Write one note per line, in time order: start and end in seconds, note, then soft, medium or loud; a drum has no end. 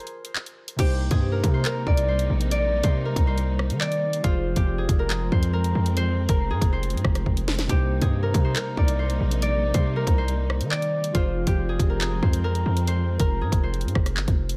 0.00 0.85 G#4 medium
0.00 1.32 A#4 medium
0.00 1.54 C5 medium
0.07 closed hi-hat medium
0.25 closed hi-hat medium
0.36 clap loud
0.46 closed hi-hat medium
0.68 closed hi-hat medium
0.76 1.10 C2 loud
0.76 4.19 C3 medium
0.76 4.21 C3 medium
0.76 4.21 G3 medium
0.76 4.19 A#3 medium
0.76 4.21 A#3 medium
0.76 4.21 D#4 medium
0.76 4.20 D#4 medium
0.76 1.17 G4 loud
0.76 kick loud
0.76 closed hi-hat loud
0.76 crash loud
0.81 4.21 C5 medium
1.11 1.42 G2 loud
1.11 3.39 G#4 medium
1.11 kick medium
1.11 closed hi-hat medium
1.32 1.65 A#4 medium
1.44 1.64 C3 loud
1.44 kick loud
1.44 closed hi-hat loud
1.54 2.08 C5 medium
1.65 3.05 A#4 medium
1.65 clap loud
1.65 closed hi-hat medium
1.87 2.28 C2 loud
1.87 2.51 D5 medium
1.87 kick loud
1.97 closed hi-hat medium
2.08 2.83 C5 medium
2.19 closed hi-hat medium
2.30 2.82 A#1 loud
2.41 closed hi-hat medium
2.51 3.80 D5 loud
2.51 closed hi-hat loud
2.83 3.15 C3 loud
2.83 3.27 C5 medium
2.83 kick medium
2.83 closed hi-hat medium
3.05 4.99 A#4 medium
3.16 3.72 C2 loud
3.16 kick loud
3.16 closed hi-hat loud
3.27 5.25 C5 medium
3.38 closed hi-hat medium
3.59 cross-stick loud
3.70 4.21 D#3 loud
3.70 closed hi-hat medium
3.80 5.65 D5 medium
3.80 clap loud
3.92 closed hi-hat medium
4.13 closed hi-hat medium
4.21 4.55 F1 loud
4.21 7.64 F3 medium
4.21 7.66 F3 medium
4.21 7.66 G#3 medium
4.21 7.66 C4 medium
4.21 7.65 F4 medium
4.21 6.76 F4 loud
4.21 7.65 G#4 medium
4.21 kick loud
4.21 closed hi-hat loud
4.26 7.66 C5 medium
4.56 4.88 F1 loud
4.56 4.84 G4 medium
4.56 kick medium
4.56 closed hi-hat medium
4.78 5.10 G#4 medium
4.89 5.30 F1 loud
4.89 kick loud
4.89 closed hi-hat loud
4.99 5.53 A#4 medium
5.10 6.50 G#4 medium
5.10 clap loud
5.10 closed hi-hat medium
5.32 5.73 F2 loud
5.32 5.96 C5 medium
5.32 kick loud
5.43 closed hi-hat medium
5.53 6.29 A#4 medium
5.64 closed hi-hat medium
5.75 6.27 F2 loud
5.86 closed hi-hat medium
5.97 6.72 C5 loud
5.97 closed hi-hat loud
6.29 6.52 F1 loud
6.29 8.22 A#4 medium
6.29 kick medium
6.29 closed hi-hat medium
6.50 6.61 G#2 loud
6.50 7.76 G#4 medium
6.62 6.95 F1 loud
6.62 kick loud
6.62 closed hi-hat medium
6.73 8.44 C5 medium
6.83 closed hi-hat medium
6.90 7.04 G#2 loud
6.90 closed hi-hat medium
6.97 closed hi-hat medium
7.04 7.25 F1 loud
7.04 kick loud
7.04 cross-stick loud
7.15 cross-stick medium
7.15 closed hi-hat medium
7.26 7.68 F1 loud
7.26 kick medium
7.37 closed hi-hat medium
7.48 snare loud
7.59 snare loud
7.59 closed hi-hat medium
7.67 8.00 C2 loud
7.67 11.09 C3 medium
7.67 11.11 C3 medium
7.67 11.11 G3 medium
7.67 11.10 A#3 medium
7.67 11.11 A#3 medium
7.67 11.11 D#4 medium
7.67 8.08 G4 loud
7.67 kick loud
7.67 closed hi-hat loud
7.71 11.12 C5 medium
8.02 8.33 G2 loud
8.02 10.29 G#4 medium
8.02 kick medium
8.02 closed hi-hat medium
8.23 8.56 A#4 medium
8.34 8.55 C3 loud
8.34 kick loud
8.34 closed hi-hat loud
8.44 8.99 C5 medium
8.56 9.96 A#4 medium
8.56 clap loud
8.56 closed hi-hat medium
8.77 9.19 C2 loud
8.77 9.42 D5 medium
8.77 kick loud
8.88 closed hi-hat medium
8.99 9.74 C5 medium
9.10 closed hi-hat medium
9.21 9.72 A#1 loud
9.31 closed hi-hat medium
9.42 10.70 D5 loud
9.42 closed hi-hat loud
9.74 10.05 C3 loud
9.74 10.18 C5 medium
9.74 kick medium
9.74 closed hi-hat loud
9.96 11.89 A#4 medium
10.07 10.62 C2 loud
10.07 kick loud
10.07 closed hi-hat medium
10.18 12.16 C5 medium
10.28 closed hi-hat medium
10.50 cross-stick loud
10.61 11.12 D#3 loud
10.61 closed hi-hat medium
10.71 12.55 D5 medium
10.71 clap loud
10.82 closed hi-hat medium
11.04 closed hi-hat medium
11.12 11.46 F1 loud
11.12 14.55 F3 medium
11.12 14.57 F3 medium
11.12 14.57 G#3 medium
11.12 14.57 C4 medium
11.12 14.55 F4 medium
11.12 13.67 F4 loud
11.12 14.56 G#4 medium
11.12 kick loud
11.12 closed hi-hat loud
11.16 14.57 C5 medium
11.47 11.78 F1 loud
11.47 11.75 G4 medium
11.47 kick medium
11.47 closed hi-hat medium
11.69 12.00 G#4 medium
11.79 12.21 F1 loud
11.79 kick loud
11.79 closed hi-hat loud
11.90 12.44 A#4 medium
12.01 13.41 G#4 medium
12.01 clap loud
12.01 closed hi-hat medium
12.23 12.64 F2 loud
12.23 12.87 C5 medium
12.23 kick loud
12.33 closed hi-hat medium
12.44 13.19 A#4 medium
12.55 closed hi-hat medium
12.66 13.18 F2 loud
12.77 closed hi-hat medium
12.87 13.63 C5 loud
12.87 closed hi-hat loud
13.20 13.43 F1 loud
13.20 14.57 A#4 medium
13.20 kick medium
13.20 closed hi-hat medium
13.41 13.52 G#2 loud
13.41 14.57 G#4 medium
13.52 13.86 F1 loud
13.52 kick loud
13.52 closed hi-hat loud
13.63 14.57 C5 medium
13.74 closed hi-hat medium
13.81 13.95 G#2 loud
13.81 closed hi-hat medium
13.88 closed hi-hat medium
13.95 14.18 F1 loud
13.95 kick loud
13.95 cross-stick loud
14.06 cross-stick medium
14.06 closed hi-hat medium
14.17 14.27 G1 loud
14.17 clap loud
14.28 14.57 F1 loud
14.28 kick medium
14.28 closed hi-hat medium
14.49 closed hi-hat medium